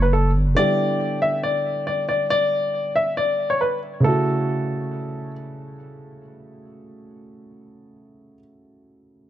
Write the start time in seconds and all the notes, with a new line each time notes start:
Already playing: F#1 C#3 F#3 A3 E4 F#4
0.02 B4
0.13 A4
0.35 G1
0.46 F#1
0.55 D3 G3 B3 E4 G4 D5
1.22 E5
1.43 D5
1.87 D5
2.09 D5
2.30 D5
2.96 E5
3.17 D5
3.50 C#5
3.61 B4
4.00 C#3 A3
4.04 E4 F#4 A4